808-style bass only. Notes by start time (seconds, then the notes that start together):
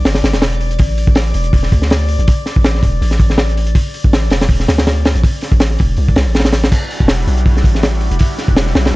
0.05 G1
0.24 G1
0.34 E1
0.80 A1
1.07 A1
1.35 E1
1.72 D2
2.19 A1
2.56 A1
2.83 E1
3.01 A1
4.04 A1
4.31 E1
4.68 D2
5.15 A1
5.52 A1
5.80 E1
5.98 C2
6.16 C2
6.26 A1
7.00 E1
7.27 B1
7.64 A1
8.11 E1
8.48 E1
8.75 B1